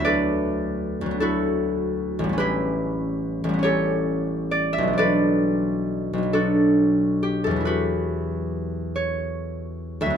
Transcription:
<<
  \new Staff \with { instrumentName = "Harp" } { \time 6/8 \key e \dorian \tempo 4. = 47 <cis'' d''>4. a'4. | b'4. cis''4 d''16 e''16 | d''4. a'4 g'16 a'16 | b'4. cis''4~ cis''16 e''16 | }
  \new Staff \with { instrumentName = "Harp" } { \time 6/8 \key e \dorian <d, fis b e' fis' a' b'>4. <d, fis b e' fis'>4. | <a,, g b cis' e' g'>4. <a,, g b cis' g' a'>4. | <b,, fis b d' a' b'>4. <b,, fis b d' fis'>4. | <e, fis b e' fis' g'>2. | }
>>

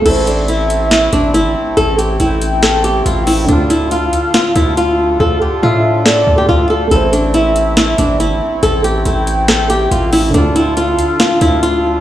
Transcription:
<<
  \new Staff \with { instrumentName = "Soft synth lead" } { \time 4/4 \key a \minor \tempo 4 = 140 r4 e''2 r4 | r4 g''2. | r4 f''2 r4 | r4 e''4 d''4 r4 |
r4 e''2 r4 | r4 g''2. | r4 f''2 r4 | }
  \new Staff \with { instrumentName = "Nylon-string guitar" } { \time 4/4 \key a \minor a'8 d'8 e'4 e'8 d'8 e'4 | a'8 g'8 e'4 a'8 g'8 f'8 e'8 | d'8 e'8 f'4 f'8 e'8 f'4 | a'8 g'8 f'4 a'8. g'16 f'8 a'8 |
a'8 d'8 e'4 e'8 d'8 e'4 | a'8 g'8 e'4 a'8 g'8 f'8 e'8 | d'8 e'8 f'4 f'8 e'8 f'4 | }
  \new Staff \with { instrumentName = "Harmonium" } { \time 4/4 \key a \minor <a c' e'>1~ | <a c' e'>1 | <d d' f' a'>1~ | <d d' f' a'>1 |
<a c' e'>1~ | <a c' e'>1 | <d d' f' a'>1 | }
  \new Staff \with { instrumentName = "Felt piano" } { \time 4/4 \key a \minor <a e' c''>1~ | <a e' c''>1 | <d a f'>1~ | <d a f'>1 |
<a e' c''>1~ | <a e' c''>1 | <d a f'>1 | }
  \new Staff \with { instrumentName = "808-style bass" } { \clef bass \time 4/4 \key a \minor a,,2~ a,,8 a,,8 g,,16 a,,16 r8 | a,,4 a,,2 a,,4 | d,4. r4 d,4. | d,8 r8 a,4. d,8 d,4 |
a,,2~ a,,8 a,,8 g,,16 a,,16 r8 | a,,4 a,,2 a,,4 | d,4. r4 d,4. | }
  \new DrumStaff \with { instrumentName = "Drums" } \drummode { \time 4/4 <cymc hh>8 hh8 hh8 hh8 <hh sn>8 hh8 hh4 | hh8 hh8 hh8 hh8 <hh sn>8 hh8 hh8 hho8 | hh8 hh8 hh8 hh8 <hh sn>8 hh8 hh4 | r4 r4 sn4 r4 |
hh8 hh8 hh8 hh8 <hh sn>8 hh8 hh4 | hh8 hh8 hh8 hh8 <hh sn>8 hh8 hh8 hho8 | hh8 hh8 hh8 hh8 <hh sn>8 hh8 hh4 | }
>>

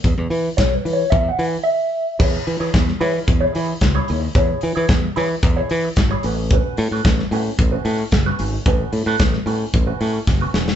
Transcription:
<<
  \new Staff \with { instrumentName = "Clean electric guitar" } { \time 4/4 \key e \major \tempo 4 = 111 r4 \tuplet 3/2 { cis''8 b'8 cis''8 e''8 fis''8 gis''8 } e''4 | <e' gis' cis''>8 r16 <e' gis' cis''>16 r8 <e' gis' cis''>16 r8 <e' gis' cis''>16 <e' gis' cis''>16 r8 <e' gis' cis''>16 <e' gis' cis''>16 r16 | <e' gis' cis''>8 r16 <e' gis' cis''>16 r8 <e' gis' cis''>16 r8 <e' gis' cis''>16 r8. <e' gis' cis''>16 <cis' fis' b'>16 r16 | <cis' fis' b'>8 r16 <cis' fis' b'>16 r8 <cis' fis' b'>16 r8 <cis' fis' b'>16 <cis' fis' b'>16 r8 <cis' fis' b'>16 <cis' fis' b'>16 r16 |
<cis' fis' b'>8 r16 <cis' fis' b'>16 r8 <cis' fis' b'>16 r8 <cis' fis' b'>16 <cis' fis' b'>16 r8 <cis' fis' b'>16 <cis' fis' b'>16 r16 | }
  \new Staff \with { instrumentName = "Fingered electric bass" } { \clef bass \time 4/4 \key e \major e,16 e,16 e8 b,,8 e8 e,8 e8 r4 | e,8 e16 e16 e,8 e8 e,8 e8 cis,8 dis,8 | e,8 e16 e16 e,8 e8 e,8 e8 gis,,8 a,,8~ | a,,8 a,16 a,16 a,,8 a,8 a,,8 a,8 fis,,8 gis,,8 |
a,,8 a,16 a,16 a,,8 a,8 a,,8 a,8 fis,,8 e,,8 | }
  \new DrumStaff \with { instrumentName = "Drums" } \drummode { \time 4/4 <hh bd>8 hho8 <hh bd sn>8 hho8 <hh bd>8 hho8 r4 | <cymc bd>8 hho8 <hh bd sn>16 sn16 hho8 <hh bd>8 hho8 <hh bd sn>8 hho8 | <hh bd>8 hho8 <hh bd sn>8 hho8 <hh bd>8 hho8 <hh bd sn>8 hho8 | <hh bd>8 hho8 <hh bd sn>16 sn16 hho8 <hh bd>8 hho8 <hh bd sn>8 hho8 |
<hh bd>8 hho8 <hh bd sn>16 sn16 hho8 <hh bd>8 hho8 <bd sn>8 sn16 sn16 | }
>>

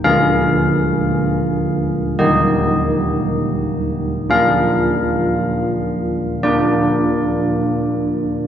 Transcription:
\new Staff \with { instrumentName = "Church bells" } { \time 4/4 \key bes \mixolydian \tempo 4 = 56 << { f''2 ees''4. r8 | f''2 d''2 | } \\ { <d bes aes'>2 <ees bes g'>2 | <bes d' f'>2 <bes d' f'>2 | } >> }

